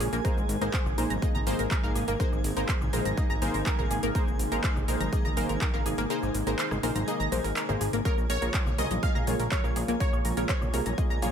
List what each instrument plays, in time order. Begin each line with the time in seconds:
Already playing: analog synth pad C#3 F3 G#3 A#3 F4, synth texture G#4 G#5
0.00 analog synth bass A#1, synth pluck G#4, open hi-hat, high woodblock, shaker
0.13 analog synth bass A#1, synth pluck A#3, closed hi-hat, shaker
0.25 analog synth pad C3 D#3 D#4, synth pluck A#3 D#4 G#4 A#4 C5, kick, closed hi-hat, shaker
0.37 analog synth bass G#1, shaker
0.49 analog synth bass G#1, open hi-hat, shaker
0.61 analog synth bass G#1, synth pluck A#3 D#4 G#4 A#4 C5, closed hi-hat, shaker
0.73 synth pluck C5, kick, clap, closed hi-hat, shaker
0.85 analog synth bass G#1, low conga, high woodblock, shaker
0.98 analog synth bass A#1, synth pluck A#3 D#4 G#4 A#4 C5, open hi-hat, shaker
1.10 analog synth bass G#1, synth pluck A#5, closed hi-hat, high conga, shaker
1.22 synth pluck A#3 D#4 G#4 D#5, kick, closed hi-hat, shaker
1.35 analog synth bass G#1, synth pluck A#5, low conga, shaker
1.47 analog synth bass G#1, synth pluck A#3 D#4 G#4 A#4 C5, open hi-hat, high conga, shaker
1.59 analog synth bass G#1, synth pluck A#4, closed hi-hat, shaker
1.71 synth pluck A#4, kick, clap, closed hi-hat, shaker
1.83 analog synth bass G#1, synth pluck A#3 D#4 G#4 A#4 F5, shaker
1.95 analog synth bass G#1, synth pluck G#4, open hi-hat, high woodblock, shaker
2.08 analog synth bass G#1, synth pluck A#3, closed hi-hat, shaker
2.20 synth pluck A#3 D#4 G#4 A#4 C5, kick, closed hi-hat, shaker
2.32 analog synth bass G#1, high woodblock, shaker
2.44 analog synth bass G#1, open hi-hat, shaker
2.57 analog synth bass G#1, synth pluck A#3 D#4 G#4 A#4 C5, closed hi-hat, shaker
2.69 synth pluck C5, kick, clap, closed hi-hat, shaker
2.81 analog synth bass G#1, low conga, high woodblock, shaker
2.93 analog synth bass A#1, synth pluck A#3 D#4 G#4 A#4 C5, open hi-hat, shaker
3.05 analog synth bass G#1, synth pluck A#5, closed hi-hat, high conga, shaker
3.17 synth pluck A#3 D#4 G#4 D#5, kick, closed hi-hat, shaker
3.30 analog synth bass G#1, synth pluck A#5, shaker
3.42 analog synth bass G#1, synth pluck A#3 D#4 G#4 A#4 C5, open hi-hat, high conga, shaker
3.54 analog synth bass G#1, synth pluck A#4, open hi-hat, shaker
3.66 synth pluck A#4, kick, clap, closed hi-hat, shaker
3.79 analog synth bass G#1, synth pluck A#3 D#4 G#4 A#4 F5, low conga, shaker
3.91 analog synth bass G#1, synth pluck G#4, open hi-hat, high woodblock, shaker
4.03 analog synth bass G#1, synth pluck A#3, closed hi-hat, shaker
4.15 synth pluck A#3 D#4 G#4 A#4 C5, kick, closed hi-hat, shaker
4.27 analog synth bass G#1, shaker
4.39 analog synth bass G#1, open hi-hat, shaker
4.52 analog synth bass G#1, synth pluck A#3 D#4 G#4 A#4 C5, closed hi-hat, shaker
4.64 synth pluck C5, kick, clap, closed hi-hat, shaker
4.76 analog synth bass G#1, low conga, high woodblock, shaker
4.88 analog synth bass A#1, synth pluck A#3 D#4 G#4 A#4 C5, open hi-hat, shaker
5.00 analog synth bass G#1, synth pluck A#5, closed hi-hat, high conga, shaker
5.13 synth pluck A#3 D#4 G#4 D#5, kick, closed hi-hat, shaker
5.25 analog synth bass G#1, synth pluck A#5, low conga, shaker
5.36 analog synth bass G#1, synth pluck A#3 D#4 G#4 A#4 C5, open hi-hat, high conga, shaker
5.49 analog synth bass G#1, synth pluck A#4, closed hi-hat, shaker
5.61 synth pluck A#4, kick, clap, closed hi-hat, shaker
5.74 analog synth bass G#1, synth pluck A#3 D#4 G#4 A#4 F5, shaker
5.86 analog synth bass G#1, synth pluck G#4, open hi-hat, high woodblock, shaker
5.98 analog synth bass G#1, synth pluck A#3, closed hi-hat, shaker
6.10 synth pluck A#3 D#4 G#4 A#4 C5, closed hi-hat, shaker
6.22 analog synth bass G#1, high woodblock, shaker
6.34 analog synth bass G#1, open hi-hat, shaker
6.47 analog synth bass G#1, synth pluck A#3 D#4 G#4 A#4 C5, closed hi-hat, shaker
6.59 synth pluck C5, clap, closed hi-hat, shaker
6.71 analog synth bass G#1, cross-stick, low conga, high woodblock, shaker
6.83 analog synth bass A#1, synth pluck A#3 D#4 G#4 A#4 C5, open hi-hat, shaker
6.95 analog synth bass G#1, synth pluck A#5, closed hi-hat, high conga, shaker
7.08 synth pluck A#3 D#4 G#4 D#5, closed hi-hat, shaker
7.20 analog synth bass G#1, synth pluck A#5, shaker
7.32 analog synth bass A#1, synth pluck A#3 D#4 G#4 A#4 C5, open hi-hat, high conga, shaker
7.44 analog synth bass G#1, synth pluck A#4, open hi-hat, shaker
7.56 synth pluck A#4, clap, closed hi-hat, shaker
7.69 analog synth bass G#1, synth pluck A#3 D#4 G#4 A#4 C5, low conga, shaker
7.81 analog synth bass G#1, synth pluck G#4, open hi-hat, high woodblock, shaker
7.93 analog synth bass G#1, synth pluck A#3, closed hi-hat, shaker
8.05 analog synth pad C#3 F3 G#3 A#3 F4, synth pluck A#3 F4 G#4 A#4 C#5, synth texture G#4 G#5, kick, closed hi-hat, shaker
8.18 analog synth bass A#1, shaker
8.30 analog synth bass A#1, synth pluck A#4 C#5, open hi-hat, shaker
8.42 analog synth bass A#1, synth pluck A#3 F4 G#4 A#4 C#5, closed hi-hat, shaker
8.54 synth pluck C5, kick, clap, closed hi-hat, shaker
8.66 analog synth bass A#1, low conga, high woodblock, shaker
8.78 analog synth bass C2, synth pluck A#3 F4 G#4 A#4 C#5 D#5, open hi-hat, shaker
8.91 analog synth bass A#1, synth pluck A#5, closed hi-hat, high conga, shaker
9.03 synth pluck A#3 F4 G#4 D#5 F5, kick, closed hi-hat, shaker
9.15 analog synth bass A#1, synth pluck A#5, low conga, shaker
9.27 analog synth bass A#1, synth pluck A#3 F4 G#4 C#5, open hi-hat, high conga, shaker
9.39 analog synth bass A#1, synth pluck A#4, closed hi-hat, shaker
9.52 synth pluck A#4 C#5, kick, clap, closed hi-hat, shaker
9.64 analog synth bass A#1, synth pluck A#3 F4 G#4 A#4 F5, shaker
9.76 analog synth bass A#1, synth pluck G#4, open hi-hat, high woodblock, shaker
9.88 analog synth bass A#1, synth pluck A#3, closed hi-hat, shaker
10.00 synth pluck A#3 F4 G#4 A#4 C#5, kick, closed hi-hat, shaker
10.13 analog synth bass A#1, high woodblock, shaker
10.25 analog synth bass A#1, synth pluck A#4, open hi-hat, shaker
10.37 analog synth bass A#1, synth pluck A#3 F4 G#4 A#4 C#5, closed hi-hat, shaker
10.49 synth pluck C5 C#5, kick, clap, closed hi-hat, shaker
10.61 analog synth bass A#1, low conga, high woodblock, shaker
10.74 analog synth bass C2, synth pluck A#3 F4 G#4 A#4 C#5, open hi-hat, shaker
10.86 analog synth bass A#1, synth pluck A#5, closed hi-hat, high conga, shaker
10.98 synth pluck A#3 F4 G#4 D#5, kick, closed hi-hat, shaker
11.10 analog synth bass A#1, synth pluck A#5, shaker
11.22 analog synth bass A#1, synth pluck A#3 F4 G#4 C#5, open hi-hat, high conga, shaker